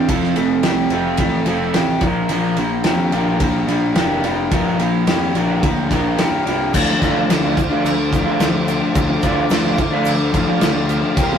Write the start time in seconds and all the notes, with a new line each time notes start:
Already playing: G4
0.08 F1 F3 C4 F4 A4, kick, ride
0.23 snare
0.36 F1 A3 C4 F4, ride
0.63 C2 C4 F4 G4, snare, ride
0.90 F1 C4 F4 A4, ride
1.17 A1 A3 C4 F4, kick, ride
1.46 F1 C4 F4 A4, ride
1.74 A1 C4 F4 G4, snare, ride
2.01 A#1 F3 D4 F4 A#4, kick, ride
2.29 A#1 F3 D4 F4 A#4, ride
2.57 A#1 A#3 D4 F4, ride
2.84 F2 D4 F4 G4, snare, ride
3.12 A#1 D4 F4 A#4, ride
3.40 A#1 A#3 D4 F4, kick, ride
3.67 A#1 D4 F4, ride
3.94 F1 D4 F4 G4 A#4, snare, ride
4.24 D4 F4, ride
4.51 G2 F3 D4 F4 A#4, kick, ride
4.79 A#1 A#3 D4 F4, ride
5.07 F2 D4 F4 G4, snare, ride
5.35 A#1 D4 F4 A#4, ride
5.62 D2 A#3 D4 F4, kick, ride
5.89 A#1 D4 F4, kick, ride
5.93 A#4
6.17 G2 D4 F4 G4, snare, ride
6.46 C2 D4 F4, ride
6.73 D2 F3 A3 D4 C5 F5 D6, kick, crash, shaker
6.90 muted overdriven electric guitar stroke
7.00 D2 F3 A3 D4, kick, crash, shaker
7.04 F4
7.28 D2 F3 A3 D4, muted overdriven electric guitar stroke, snare, crash, shaker
7.42 F3 A3 D4 F4
7.57 muted overdriven electric guitar stroke, kick, crash, shaker
7.70 F3 A3 D4 F4
7.85 D2, crash, shaker
8.11 F3 A3 D4, kick, crash, shaker
8.26 F3 A3 D4 F4
8.39 D2 F3 A3 D4, snare, crash, shaker
8.52 A3 D4, muted overdriven electric guitar stroke
8.67 F3 A3 D4, crash, shaker
8.80 A3 D4
8.94 D2 F3 A3 D4, kick, crash, shaker
9.09 muted overdriven electric guitar stroke
9.22 D2 F3 A3 D4 F4, kick, crash, shaker
9.50 D2 F3 A3 D4, muted overdriven electric guitar stroke, snare, crash, shaker
9.63 F3 A3 D4 F4
9.78 muted overdriven electric guitar stroke, kick, crash, shaker
9.90 F3 A3 D4 F4
10.05 D2, crash, shaker
10.31 F3 A3 D4, kick, crash, shaker
10.48 F3 A3 D4 F4
10.60 D2 F3 A3 D4, snare, crash, shaker
10.73 A3 D4, muted overdriven electric guitar stroke
10.87 F3 A3 D4, crash, shaker
11.01 A3 D4
11.15 C2 E3 A#3 C4 G4 A#4 C6, kick, crash, shaker
11.32 muted overdriven electric guitar stroke